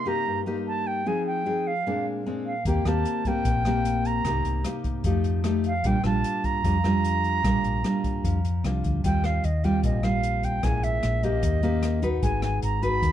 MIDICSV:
0, 0, Header, 1, 5, 480
1, 0, Start_track
1, 0, Key_signature, -2, "major"
1, 0, Tempo, 399202
1, 1272, Time_signature, 4, 2, 24, 8
1, 10868, Key_signature, -3, "major"
1, 15778, End_track
2, 0, Start_track
2, 0, Title_t, "Flute"
2, 0, Program_c, 0, 73
2, 97, Note_on_c, 0, 82, 93
2, 481, Note_off_c, 0, 82, 0
2, 814, Note_on_c, 0, 81, 83
2, 1046, Note_on_c, 0, 79, 93
2, 1064, Note_off_c, 0, 81, 0
2, 1292, Note_on_c, 0, 80, 83
2, 1310, Note_off_c, 0, 79, 0
2, 1519, Note_off_c, 0, 80, 0
2, 1527, Note_on_c, 0, 79, 81
2, 2010, Note_on_c, 0, 77, 82
2, 2028, Note_off_c, 0, 79, 0
2, 2481, Note_off_c, 0, 77, 0
2, 2960, Note_on_c, 0, 77, 64
2, 3179, Note_off_c, 0, 77, 0
2, 3220, Note_on_c, 0, 79, 73
2, 3457, Note_on_c, 0, 81, 81
2, 3475, Note_off_c, 0, 79, 0
2, 3939, Note_on_c, 0, 79, 91
2, 3957, Note_off_c, 0, 81, 0
2, 4887, Note_on_c, 0, 82, 93
2, 4905, Note_off_c, 0, 79, 0
2, 5598, Note_off_c, 0, 82, 0
2, 6817, Note_on_c, 0, 77, 81
2, 7052, Note_on_c, 0, 79, 91
2, 7070, Note_off_c, 0, 77, 0
2, 7275, Note_off_c, 0, 79, 0
2, 7282, Note_on_c, 0, 81, 93
2, 7758, Note_on_c, 0, 82, 104
2, 7776, Note_off_c, 0, 81, 0
2, 10393, Note_off_c, 0, 82, 0
2, 10879, Note_on_c, 0, 79, 79
2, 11122, Note_on_c, 0, 77, 69
2, 11140, Note_off_c, 0, 79, 0
2, 11361, Note_on_c, 0, 75, 73
2, 11379, Note_off_c, 0, 77, 0
2, 11598, Note_on_c, 0, 79, 81
2, 11616, Note_off_c, 0, 75, 0
2, 11833, Note_off_c, 0, 79, 0
2, 11844, Note_on_c, 0, 75, 69
2, 12075, Note_on_c, 0, 77, 84
2, 12093, Note_off_c, 0, 75, 0
2, 12560, Note_on_c, 0, 79, 79
2, 12578, Note_off_c, 0, 77, 0
2, 12793, Note_on_c, 0, 80, 84
2, 12811, Note_off_c, 0, 79, 0
2, 13030, Note_on_c, 0, 76, 83
2, 13048, Note_off_c, 0, 80, 0
2, 13510, Note_on_c, 0, 75, 92
2, 13528, Note_off_c, 0, 76, 0
2, 14469, Note_off_c, 0, 75, 0
2, 14707, Note_on_c, 0, 80, 85
2, 14931, Note_off_c, 0, 80, 0
2, 14957, Note_on_c, 0, 80, 76
2, 15176, Note_off_c, 0, 80, 0
2, 15193, Note_on_c, 0, 82, 86
2, 15423, Note_on_c, 0, 83, 104
2, 15441, Note_off_c, 0, 82, 0
2, 15778, Note_off_c, 0, 83, 0
2, 15778, End_track
3, 0, Start_track
3, 0, Title_t, "Nylon-string guitar"
3, 0, Program_c, 1, 24
3, 0, Note_on_c, 1, 48, 53
3, 66, Note_on_c, 1, 58, 59
3, 75, Note_on_c, 1, 63, 55
3, 79, Note_on_c, 1, 67, 62
3, 290, Note_off_c, 1, 48, 0
3, 308, Note_on_c, 1, 43, 50
3, 512, Note_off_c, 1, 58, 0
3, 514, Note_off_c, 1, 63, 0
3, 517, Note_off_c, 1, 67, 0
3, 555, Note_on_c, 1, 58, 55
3, 563, Note_on_c, 1, 63, 58
3, 570, Note_on_c, 1, 67, 62
3, 1236, Note_off_c, 1, 58, 0
3, 1238, Note_off_c, 1, 63, 0
3, 1242, Note_off_c, 1, 67, 0
3, 1246, Note_off_c, 1, 43, 0
3, 1274, Note_on_c, 1, 53, 50
3, 1278, Note_on_c, 1, 60, 50
3, 1278, Note_on_c, 1, 63, 54
3, 1283, Note_on_c, 1, 68, 53
3, 1715, Note_off_c, 1, 60, 0
3, 1717, Note_off_c, 1, 63, 0
3, 1718, Note_off_c, 1, 68, 0
3, 1748, Note_on_c, 1, 60, 45
3, 1756, Note_on_c, 1, 63, 48
3, 1761, Note_on_c, 1, 68, 55
3, 2059, Note_off_c, 1, 60, 0
3, 2064, Note_off_c, 1, 63, 0
3, 2065, Note_off_c, 1, 68, 0
3, 2210, Note_off_c, 1, 53, 0
3, 2241, Note_on_c, 1, 46, 49
3, 2243, Note_on_c, 1, 56, 43
3, 2249, Note_on_c, 1, 60, 48
3, 2253, Note_on_c, 1, 62, 61
3, 2678, Note_off_c, 1, 56, 0
3, 2680, Note_off_c, 1, 60, 0
3, 2684, Note_off_c, 1, 62, 0
3, 2720, Note_on_c, 1, 56, 49
3, 2723, Note_on_c, 1, 60, 50
3, 2734, Note_on_c, 1, 62, 55
3, 3038, Note_off_c, 1, 56, 0
3, 3041, Note_off_c, 1, 60, 0
3, 3043, Note_off_c, 1, 62, 0
3, 3173, Note_off_c, 1, 46, 0
3, 3202, Note_on_c, 1, 58, 50
3, 3207, Note_on_c, 1, 51, 50
3, 3209, Note_on_c, 1, 60, 50
3, 3215, Note_on_c, 1, 67, 54
3, 3398, Note_off_c, 1, 58, 0
3, 3400, Note_off_c, 1, 60, 0
3, 3403, Note_off_c, 1, 67, 0
3, 3441, Note_on_c, 1, 58, 54
3, 3449, Note_on_c, 1, 60, 55
3, 3452, Note_on_c, 1, 67, 63
3, 3878, Note_off_c, 1, 58, 0
3, 3880, Note_off_c, 1, 60, 0
3, 3883, Note_off_c, 1, 67, 0
3, 3923, Note_on_c, 1, 58, 58
3, 3928, Note_on_c, 1, 60, 58
3, 3936, Note_on_c, 1, 67, 65
3, 4135, Note_off_c, 1, 51, 0
3, 4169, Note_on_c, 1, 46, 46
3, 4358, Note_off_c, 1, 58, 0
3, 4361, Note_off_c, 1, 60, 0
3, 4363, Note_off_c, 1, 67, 0
3, 4406, Note_on_c, 1, 58, 54
3, 4412, Note_on_c, 1, 67, 55
3, 4413, Note_on_c, 1, 60, 50
3, 5080, Note_off_c, 1, 58, 0
3, 5082, Note_off_c, 1, 60, 0
3, 5082, Note_off_c, 1, 67, 0
3, 5095, Note_off_c, 1, 46, 0
3, 5118, Note_on_c, 1, 48, 53
3, 5127, Note_on_c, 1, 58, 52
3, 5127, Note_on_c, 1, 63, 52
3, 5134, Note_on_c, 1, 67, 56
3, 5558, Note_off_c, 1, 58, 0
3, 5560, Note_off_c, 1, 63, 0
3, 5562, Note_off_c, 1, 67, 0
3, 5594, Note_on_c, 1, 58, 43
3, 5599, Note_on_c, 1, 63, 49
3, 5605, Note_on_c, 1, 67, 49
3, 6050, Note_off_c, 1, 48, 0
3, 6054, Note_off_c, 1, 58, 0
3, 6054, Note_off_c, 1, 63, 0
3, 6056, Note_off_c, 1, 67, 0
3, 6075, Note_on_c, 1, 53, 49
3, 6081, Note_on_c, 1, 57, 50
3, 6083, Note_on_c, 1, 63, 51
3, 6087, Note_on_c, 1, 67, 52
3, 6515, Note_off_c, 1, 57, 0
3, 6518, Note_off_c, 1, 63, 0
3, 6519, Note_off_c, 1, 67, 0
3, 6551, Note_on_c, 1, 57, 54
3, 6557, Note_on_c, 1, 63, 47
3, 6562, Note_on_c, 1, 67, 60
3, 6873, Note_off_c, 1, 57, 0
3, 6875, Note_off_c, 1, 63, 0
3, 6878, Note_off_c, 1, 67, 0
3, 7009, Note_off_c, 1, 53, 0
3, 7031, Note_on_c, 1, 46, 46
3, 7037, Note_on_c, 1, 55, 50
3, 7037, Note_on_c, 1, 62, 51
3, 7044, Note_on_c, 1, 65, 53
3, 7172, Note_off_c, 1, 55, 0
3, 7174, Note_off_c, 1, 62, 0
3, 7177, Note_off_c, 1, 65, 0
3, 7266, Note_on_c, 1, 55, 57
3, 7272, Note_on_c, 1, 62, 51
3, 7276, Note_on_c, 1, 65, 67
3, 7949, Note_off_c, 1, 55, 0
3, 7952, Note_off_c, 1, 62, 0
3, 7954, Note_off_c, 1, 65, 0
3, 7967, Note_off_c, 1, 46, 0
3, 7985, Note_on_c, 1, 53, 53
3, 7993, Note_on_c, 1, 55, 46
3, 7995, Note_on_c, 1, 62, 47
3, 8002, Note_on_c, 1, 65, 56
3, 8131, Note_off_c, 1, 55, 0
3, 8134, Note_off_c, 1, 62, 0
3, 8135, Note_off_c, 1, 65, 0
3, 8233, Note_on_c, 1, 55, 57
3, 8239, Note_on_c, 1, 62, 58
3, 8246, Note_on_c, 1, 65, 58
3, 8912, Note_off_c, 1, 55, 0
3, 8915, Note_off_c, 1, 62, 0
3, 8919, Note_off_c, 1, 65, 0
3, 8923, Note_off_c, 1, 53, 0
3, 8949, Note_on_c, 1, 46, 53
3, 8951, Note_on_c, 1, 55, 54
3, 8952, Note_on_c, 1, 62, 54
3, 8957, Note_on_c, 1, 65, 55
3, 9390, Note_off_c, 1, 55, 0
3, 9393, Note_off_c, 1, 62, 0
3, 9394, Note_off_c, 1, 65, 0
3, 9425, Note_on_c, 1, 55, 46
3, 9432, Note_on_c, 1, 62, 51
3, 9438, Note_on_c, 1, 65, 53
3, 9885, Note_off_c, 1, 46, 0
3, 9910, Note_on_c, 1, 53, 48
3, 10072, Note_off_c, 1, 55, 0
3, 10074, Note_off_c, 1, 62, 0
3, 10078, Note_off_c, 1, 65, 0
3, 10401, Note_on_c, 1, 55, 47
3, 10406, Note_on_c, 1, 62, 49
3, 10408, Note_on_c, 1, 65, 57
3, 10845, Note_off_c, 1, 53, 0
3, 10856, Note_off_c, 1, 55, 0
3, 10857, Note_off_c, 1, 62, 0
3, 10859, Note_off_c, 1, 65, 0
3, 10870, Note_on_c, 1, 51, 50
3, 10875, Note_on_c, 1, 55, 55
3, 10877, Note_on_c, 1, 60, 49
3, 10883, Note_on_c, 1, 65, 53
3, 11347, Note_off_c, 1, 55, 0
3, 11350, Note_off_c, 1, 60, 0
3, 11352, Note_off_c, 1, 65, 0
3, 11592, Note_on_c, 1, 55, 60
3, 11601, Note_on_c, 1, 60, 53
3, 11605, Note_on_c, 1, 65, 67
3, 11806, Note_off_c, 1, 51, 0
3, 11830, Note_on_c, 1, 46, 50
3, 12033, Note_off_c, 1, 55, 0
3, 12035, Note_off_c, 1, 60, 0
3, 12038, Note_off_c, 1, 65, 0
3, 12064, Note_on_c, 1, 55, 54
3, 12070, Note_on_c, 1, 60, 61
3, 12077, Note_on_c, 1, 65, 54
3, 12747, Note_off_c, 1, 55, 0
3, 12751, Note_off_c, 1, 60, 0
3, 12754, Note_off_c, 1, 65, 0
3, 12765, Note_off_c, 1, 46, 0
3, 12788, Note_on_c, 1, 46, 51
3, 12791, Note_on_c, 1, 56, 53
3, 12797, Note_on_c, 1, 64, 54
3, 12800, Note_on_c, 1, 61, 53
3, 13471, Note_off_c, 1, 56, 0
3, 13473, Note_off_c, 1, 61, 0
3, 13474, Note_off_c, 1, 64, 0
3, 13506, Note_on_c, 1, 58, 57
3, 13510, Note_on_c, 1, 61, 56
3, 13518, Note_on_c, 1, 67, 71
3, 13725, Note_off_c, 1, 46, 0
3, 13737, Note_on_c, 1, 51, 52
3, 13950, Note_off_c, 1, 58, 0
3, 13950, Note_off_c, 1, 61, 0
3, 13952, Note_off_c, 1, 67, 0
3, 13982, Note_on_c, 1, 58, 62
3, 13988, Note_on_c, 1, 61, 53
3, 13997, Note_on_c, 1, 67, 63
3, 14427, Note_off_c, 1, 58, 0
3, 14431, Note_off_c, 1, 61, 0
3, 14433, Note_off_c, 1, 67, 0
3, 14455, Note_on_c, 1, 63, 65
3, 14460, Note_on_c, 1, 66, 60
3, 14468, Note_on_c, 1, 71, 59
3, 14679, Note_off_c, 1, 51, 0
3, 14702, Note_on_c, 1, 56, 50
3, 15383, Note_off_c, 1, 63, 0
3, 15386, Note_off_c, 1, 66, 0
3, 15388, Note_off_c, 1, 71, 0
3, 15417, Note_on_c, 1, 63, 58
3, 15425, Note_on_c, 1, 66, 54
3, 15428, Note_on_c, 1, 71, 71
3, 15641, Note_off_c, 1, 56, 0
3, 15660, Note_on_c, 1, 51, 49
3, 15778, Note_off_c, 1, 51, 0
3, 15778, Note_off_c, 1, 63, 0
3, 15778, Note_off_c, 1, 66, 0
3, 15778, Note_off_c, 1, 71, 0
3, 15778, End_track
4, 0, Start_track
4, 0, Title_t, "Fingered electric bass"
4, 0, Program_c, 2, 33
4, 3189, Note_on_c, 2, 39, 85
4, 3413, Note_off_c, 2, 39, 0
4, 3426, Note_on_c, 2, 39, 79
4, 3652, Note_off_c, 2, 39, 0
4, 4149, Note_on_c, 2, 34, 81
4, 5061, Note_off_c, 2, 34, 0
4, 5103, Note_on_c, 2, 36, 99
4, 5330, Note_off_c, 2, 36, 0
4, 5345, Note_on_c, 2, 36, 82
4, 5570, Note_off_c, 2, 36, 0
4, 6066, Note_on_c, 2, 41, 81
4, 6979, Note_off_c, 2, 41, 0
4, 7020, Note_on_c, 2, 34, 86
4, 7247, Note_off_c, 2, 34, 0
4, 7256, Note_on_c, 2, 34, 82
4, 7485, Note_off_c, 2, 34, 0
4, 7988, Note_on_c, 2, 41, 84
4, 8900, Note_off_c, 2, 41, 0
4, 8947, Note_on_c, 2, 34, 99
4, 9171, Note_off_c, 2, 34, 0
4, 9182, Note_on_c, 2, 34, 76
4, 9408, Note_off_c, 2, 34, 0
4, 9913, Note_on_c, 2, 41, 83
4, 10357, Note_off_c, 2, 41, 0
4, 10385, Note_on_c, 2, 36, 75
4, 10603, Note_off_c, 2, 36, 0
4, 10626, Note_on_c, 2, 38, 66
4, 10843, Note_off_c, 2, 38, 0
4, 10868, Note_on_c, 2, 39, 87
4, 11314, Note_off_c, 2, 39, 0
4, 11349, Note_on_c, 2, 39, 74
4, 11795, Note_off_c, 2, 39, 0
4, 11829, Note_on_c, 2, 34, 91
4, 12740, Note_off_c, 2, 34, 0
4, 12784, Note_on_c, 2, 34, 89
4, 13233, Note_off_c, 2, 34, 0
4, 13266, Note_on_c, 2, 34, 83
4, 13714, Note_off_c, 2, 34, 0
4, 13741, Note_on_c, 2, 39, 88
4, 14657, Note_off_c, 2, 39, 0
4, 14700, Note_on_c, 2, 32, 86
4, 15150, Note_off_c, 2, 32, 0
4, 15184, Note_on_c, 2, 32, 80
4, 15633, Note_off_c, 2, 32, 0
4, 15660, Note_on_c, 2, 39, 101
4, 15778, Note_off_c, 2, 39, 0
4, 15778, End_track
5, 0, Start_track
5, 0, Title_t, "Drums"
5, 3190, Note_on_c, 9, 36, 51
5, 3191, Note_on_c, 9, 42, 39
5, 3310, Note_off_c, 9, 36, 0
5, 3311, Note_off_c, 9, 42, 0
5, 3432, Note_on_c, 9, 37, 58
5, 3432, Note_on_c, 9, 42, 24
5, 3552, Note_off_c, 9, 37, 0
5, 3552, Note_off_c, 9, 42, 0
5, 3671, Note_on_c, 9, 42, 38
5, 3791, Note_off_c, 9, 42, 0
5, 3908, Note_on_c, 9, 36, 44
5, 3908, Note_on_c, 9, 42, 21
5, 4028, Note_off_c, 9, 36, 0
5, 4028, Note_off_c, 9, 42, 0
5, 4148, Note_on_c, 9, 42, 42
5, 4149, Note_on_c, 9, 36, 54
5, 4268, Note_off_c, 9, 42, 0
5, 4269, Note_off_c, 9, 36, 0
5, 4389, Note_on_c, 9, 37, 54
5, 4389, Note_on_c, 9, 42, 25
5, 4510, Note_off_c, 9, 37, 0
5, 4510, Note_off_c, 9, 42, 0
5, 4630, Note_on_c, 9, 42, 42
5, 4750, Note_off_c, 9, 42, 0
5, 4869, Note_on_c, 9, 42, 26
5, 4990, Note_off_c, 9, 42, 0
5, 5107, Note_on_c, 9, 36, 56
5, 5107, Note_on_c, 9, 37, 59
5, 5107, Note_on_c, 9, 42, 38
5, 5227, Note_off_c, 9, 36, 0
5, 5227, Note_off_c, 9, 37, 0
5, 5227, Note_off_c, 9, 42, 0
5, 5348, Note_on_c, 9, 42, 27
5, 5468, Note_off_c, 9, 42, 0
5, 5585, Note_on_c, 9, 37, 54
5, 5585, Note_on_c, 9, 42, 43
5, 5705, Note_off_c, 9, 37, 0
5, 5705, Note_off_c, 9, 42, 0
5, 5822, Note_on_c, 9, 42, 24
5, 5825, Note_on_c, 9, 36, 50
5, 5942, Note_off_c, 9, 42, 0
5, 5945, Note_off_c, 9, 36, 0
5, 6060, Note_on_c, 9, 42, 41
5, 6064, Note_on_c, 9, 36, 56
5, 6180, Note_off_c, 9, 42, 0
5, 6184, Note_off_c, 9, 36, 0
5, 6302, Note_on_c, 9, 42, 27
5, 6422, Note_off_c, 9, 42, 0
5, 6540, Note_on_c, 9, 37, 58
5, 6540, Note_on_c, 9, 42, 40
5, 6661, Note_off_c, 9, 37, 0
5, 6661, Note_off_c, 9, 42, 0
5, 6779, Note_on_c, 9, 42, 24
5, 6899, Note_off_c, 9, 42, 0
5, 7021, Note_on_c, 9, 42, 39
5, 7024, Note_on_c, 9, 36, 56
5, 7141, Note_off_c, 9, 42, 0
5, 7144, Note_off_c, 9, 36, 0
5, 7259, Note_on_c, 9, 37, 58
5, 7259, Note_on_c, 9, 42, 25
5, 7379, Note_off_c, 9, 37, 0
5, 7379, Note_off_c, 9, 42, 0
5, 7506, Note_on_c, 9, 42, 36
5, 7626, Note_off_c, 9, 42, 0
5, 7744, Note_on_c, 9, 42, 23
5, 7746, Note_on_c, 9, 36, 46
5, 7864, Note_off_c, 9, 42, 0
5, 7866, Note_off_c, 9, 36, 0
5, 7987, Note_on_c, 9, 36, 51
5, 7989, Note_on_c, 9, 42, 39
5, 8107, Note_off_c, 9, 36, 0
5, 8109, Note_off_c, 9, 42, 0
5, 8226, Note_on_c, 9, 37, 50
5, 8226, Note_on_c, 9, 42, 24
5, 8346, Note_off_c, 9, 37, 0
5, 8346, Note_off_c, 9, 42, 0
5, 8470, Note_on_c, 9, 42, 37
5, 8590, Note_off_c, 9, 42, 0
5, 8707, Note_on_c, 9, 42, 24
5, 8827, Note_off_c, 9, 42, 0
5, 8948, Note_on_c, 9, 36, 57
5, 8951, Note_on_c, 9, 37, 57
5, 8951, Note_on_c, 9, 42, 42
5, 9068, Note_off_c, 9, 36, 0
5, 9071, Note_off_c, 9, 37, 0
5, 9071, Note_off_c, 9, 42, 0
5, 9190, Note_on_c, 9, 42, 29
5, 9310, Note_off_c, 9, 42, 0
5, 9431, Note_on_c, 9, 37, 53
5, 9431, Note_on_c, 9, 42, 41
5, 9551, Note_off_c, 9, 37, 0
5, 9551, Note_off_c, 9, 42, 0
5, 9670, Note_on_c, 9, 36, 52
5, 9671, Note_on_c, 9, 42, 26
5, 9790, Note_off_c, 9, 36, 0
5, 9791, Note_off_c, 9, 42, 0
5, 9911, Note_on_c, 9, 36, 57
5, 9915, Note_on_c, 9, 42, 43
5, 10031, Note_off_c, 9, 36, 0
5, 10035, Note_off_c, 9, 42, 0
5, 10155, Note_on_c, 9, 42, 27
5, 10276, Note_off_c, 9, 42, 0
5, 10393, Note_on_c, 9, 37, 51
5, 10393, Note_on_c, 9, 42, 38
5, 10514, Note_off_c, 9, 37, 0
5, 10514, Note_off_c, 9, 42, 0
5, 10630, Note_on_c, 9, 36, 49
5, 10630, Note_on_c, 9, 42, 24
5, 10750, Note_off_c, 9, 36, 0
5, 10751, Note_off_c, 9, 42, 0
5, 10870, Note_on_c, 9, 36, 59
5, 10872, Note_on_c, 9, 42, 40
5, 10990, Note_off_c, 9, 36, 0
5, 10993, Note_off_c, 9, 42, 0
5, 11108, Note_on_c, 9, 37, 53
5, 11108, Note_on_c, 9, 42, 25
5, 11229, Note_off_c, 9, 37, 0
5, 11229, Note_off_c, 9, 42, 0
5, 11347, Note_on_c, 9, 42, 38
5, 11467, Note_off_c, 9, 42, 0
5, 11589, Note_on_c, 9, 36, 20
5, 11590, Note_on_c, 9, 42, 22
5, 11710, Note_off_c, 9, 36, 0
5, 11710, Note_off_c, 9, 42, 0
5, 11825, Note_on_c, 9, 42, 40
5, 11829, Note_on_c, 9, 36, 55
5, 11945, Note_off_c, 9, 42, 0
5, 11949, Note_off_c, 9, 36, 0
5, 12063, Note_on_c, 9, 37, 53
5, 12063, Note_on_c, 9, 42, 25
5, 12183, Note_off_c, 9, 37, 0
5, 12183, Note_off_c, 9, 42, 0
5, 12305, Note_on_c, 9, 42, 40
5, 12425, Note_off_c, 9, 42, 0
5, 12545, Note_on_c, 9, 42, 27
5, 12546, Note_on_c, 9, 36, 23
5, 12665, Note_off_c, 9, 42, 0
5, 12667, Note_off_c, 9, 36, 0
5, 12783, Note_on_c, 9, 37, 54
5, 12783, Note_on_c, 9, 42, 45
5, 12786, Note_on_c, 9, 36, 52
5, 12903, Note_off_c, 9, 37, 0
5, 12903, Note_off_c, 9, 42, 0
5, 12906, Note_off_c, 9, 36, 0
5, 13026, Note_on_c, 9, 42, 27
5, 13146, Note_off_c, 9, 42, 0
5, 13261, Note_on_c, 9, 37, 54
5, 13261, Note_on_c, 9, 42, 40
5, 13381, Note_off_c, 9, 37, 0
5, 13381, Note_off_c, 9, 42, 0
5, 13504, Note_on_c, 9, 36, 21
5, 13505, Note_on_c, 9, 42, 29
5, 13624, Note_off_c, 9, 36, 0
5, 13626, Note_off_c, 9, 42, 0
5, 13741, Note_on_c, 9, 42, 45
5, 13743, Note_on_c, 9, 36, 56
5, 13861, Note_off_c, 9, 42, 0
5, 13863, Note_off_c, 9, 36, 0
5, 13981, Note_on_c, 9, 42, 27
5, 14101, Note_off_c, 9, 42, 0
5, 14220, Note_on_c, 9, 37, 60
5, 14220, Note_on_c, 9, 42, 44
5, 14341, Note_off_c, 9, 37, 0
5, 14341, Note_off_c, 9, 42, 0
5, 14460, Note_on_c, 9, 42, 27
5, 14462, Note_on_c, 9, 36, 22
5, 14580, Note_off_c, 9, 42, 0
5, 14582, Note_off_c, 9, 36, 0
5, 14700, Note_on_c, 9, 36, 56
5, 14701, Note_on_c, 9, 42, 38
5, 14821, Note_off_c, 9, 36, 0
5, 14821, Note_off_c, 9, 42, 0
5, 14937, Note_on_c, 9, 37, 55
5, 14937, Note_on_c, 9, 42, 26
5, 15058, Note_off_c, 9, 37, 0
5, 15058, Note_off_c, 9, 42, 0
5, 15179, Note_on_c, 9, 42, 39
5, 15300, Note_off_c, 9, 42, 0
5, 15421, Note_on_c, 9, 36, 21
5, 15423, Note_on_c, 9, 42, 24
5, 15541, Note_off_c, 9, 36, 0
5, 15543, Note_off_c, 9, 42, 0
5, 15661, Note_on_c, 9, 36, 53
5, 15661, Note_on_c, 9, 42, 37
5, 15778, Note_off_c, 9, 36, 0
5, 15778, Note_off_c, 9, 42, 0
5, 15778, End_track
0, 0, End_of_file